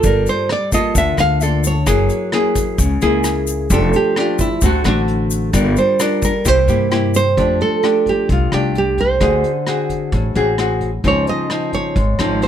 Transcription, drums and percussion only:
0.03 kick medium
0.03 closed hi-hat medium
0.03 shaker medium
0.26 closed hi-hat soft
0.26 shaker soft
0.49 cross-stick medium
0.49 closed hi-hat soft
0.72 kick medium
0.72 closed hi-hat soft
0.72 shaker medium
0.95 kick medium
0.95 closed hi-hat medium
0.95 shaker medium
1.18 cross-stick medium
1.18 closed hi-hat soft
1.18 shaker soft
1.41 closed hi-hat soft
1.41 shaker medium
1.64 closed hi-hat soft
1.64 shaker medium
1.87 kick medium
1.87 cross-stick medium
1.87 closed hi-hat medium
1.87 shaker medium
2.10 closed hi-hat soft
2.10 shaker soft
2.32 cross-stick medium
2.32 closed hi-hat soft
2.55 kick medium
2.55 closed hi-hat soft
2.55 shaker medium
2.78 kick medium
2.78 closed hi-hat medium
2.78 shaker medium
3.01 closed hi-hat soft
3.01 shaker soft
3.24 cross-stick medium
3.24 closed hi-hat soft
3.24 shaker medium
3.47 closed hi-hat soft
3.47 shaker medium
3.70 kick medium
3.70 closed hi-hat medium
3.70 shaker medium
3.93 closed hi-hat soft
3.93 shaker soft
4.16 cross-stick medium
4.16 closed hi-hat soft
4.39 kick medium
4.39 closed hi-hat soft
4.39 shaker medium
4.61 kick medium
4.61 closed hi-hat medium
4.61 shaker medium
4.85 cross-stick medium
4.85 closed hi-hat soft
4.85 shaker soft
5.08 closed hi-hat soft
5.31 closed hi-hat soft
5.31 shaker medium
5.53 kick medium
5.53 cross-stick medium
5.53 closed hi-hat medium
5.53 shaker medium
5.76 closed hi-hat soft
5.76 shaker soft
6.00 cross-stick medium
6.00 closed hi-hat soft
6.00 shaker medium
6.22 kick medium
6.22 closed hi-hat soft
6.22 shaker medium
6.45 kick medium
6.45 closed hi-hat medium
6.45 shaker medium
6.68 closed hi-hat soft
6.68 shaker soft
6.92 cross-stick medium
6.92 closed hi-hat soft
7.14 closed hi-hat soft
7.14 shaker medium
7.38 kick medium
7.38 closed hi-hat medium
7.61 closed hi-hat soft
7.84 cross-stick medium
7.84 closed hi-hat soft
8.06 kick soft
8.06 closed hi-hat soft
8.29 kick medium
8.29 closed hi-hat medium
8.52 cross-stick medium
8.52 closed hi-hat soft
8.75 closed hi-hat soft
8.98 kick soft
8.98 closed hi-hat soft
9.21 kick medium
9.21 cross-stick medium
9.21 closed hi-hat medium
9.44 closed hi-hat soft
9.67 cross-stick medium
9.67 closed hi-hat soft
9.90 kick soft
9.90 closed hi-hat soft
10.12 kick medium
10.12 closed hi-hat medium
10.35 closed hi-hat soft
10.58 cross-stick medium
10.58 closed hi-hat soft
10.81 kick soft
10.81 closed hi-hat soft
11.04 kick medium
11.04 closed hi-hat medium
11.27 closed hi-hat soft
11.50 cross-stick medium
11.50 closed hi-hat soft
11.73 kick soft
11.73 closed hi-hat soft
11.96 kick medium
11.96 closed hi-hat soft
12.19 cross-stick medium
12.19 closed hi-hat soft
12.42 closed hi-hat soft

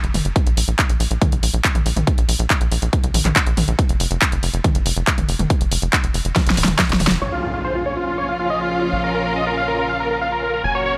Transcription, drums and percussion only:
0.04 closed hi-hat medium
0.14 open hi-hat medium
0.14 mid tom medium
0.25 closed hi-hat medium
0.36 kick loud
0.36 closed hi-hat medium
0.47 closed hi-hat medium
0.57 open hi-hat loud
0.68 closed hi-hat medium
0.79 kick loud
0.79 clap loud
0.79 closed hi-hat medium
0.89 closed hi-hat medium
1.00 open hi-hat medium
1.11 closed hi-hat medium
1.22 kick loud
1.22 closed hi-hat medium
1.22 mid tom medium
1.32 closed hi-hat medium
1.43 open hi-hat medium
1.54 closed hi-hat medium
1.64 kick loud
1.64 clap loud
1.64 closed hi-hat medium
1.75 closed hi-hat medium
1.75 mid tom medium
1.86 open hi-hat medium
1.97 closed hi-hat medium
1.97 mid tom medium
2.07 kick loud
2.07 closed hi-hat medium
2.18 closed hi-hat medium
2.29 open hi-hat loud
2.39 closed hi-hat medium
2.50 kick loud
2.50 clap loud
2.50 closed hi-hat medium
2.61 closed hi-hat medium
2.72 open hi-hat medium
2.82 closed hi-hat medium
2.93 kick loud
2.93 closed hi-hat medium
3.04 closed hi-hat medium
3.14 open hi-hat loud
3.14 mid tom medium
3.25 clap soft
3.25 closed hi-hat medium
3.25 mid tom medium
3.36 kick loud
3.36 clap loud
3.36 closed hi-hat medium
3.47 closed hi-hat medium
3.57 open hi-hat medium
3.57 mid tom medium
3.68 closed hi-hat medium
3.79 kick loud
3.79 closed hi-hat medium
3.89 closed hi-hat medium
4.00 open hi-hat medium
4.11 closed hi-hat medium
4.22 kick loud
4.22 clap loud
4.22 closed hi-hat medium
4.32 closed hi-hat medium
4.43 open hi-hat medium
4.54 closed hi-hat medium
4.64 kick loud
4.64 closed hi-hat medium
4.64 mid tom medium
4.75 closed hi-hat medium
4.86 open hi-hat medium
4.97 closed hi-hat medium
5.07 kick loud
5.07 clap loud
5.07 closed hi-hat medium
5.18 closed hi-hat medium
5.18 mid tom medium
5.29 open hi-hat medium
5.39 closed hi-hat medium
5.39 mid tom medium
5.50 kick loud
5.50 closed hi-hat medium
5.61 closed hi-hat medium
5.72 open hi-hat loud
5.82 closed hi-hat medium
5.93 kick loud
5.93 clap loud
5.93 closed hi-hat medium
6.04 closed hi-hat medium
6.14 open hi-hat medium
6.25 closed hi-hat medium
6.36 kick loud
6.36 snare medium
6.36 closed hi-hat medium
6.47 snare medium
6.47 closed hi-hat medium
6.57 open hi-hat medium
6.57 mid tom medium
6.64 snare medium
6.64 closed hi-hat medium
6.64 mid tom medium
6.79 kick loud
6.79 snare medium
6.79 clap loud
6.79 closed hi-hat medium
6.89 snare medium
6.89 closed hi-hat medium
7.00 open hi-hat medium
7.00 mid tom medium
7.07 snare loud
7.07 closed hi-hat medium

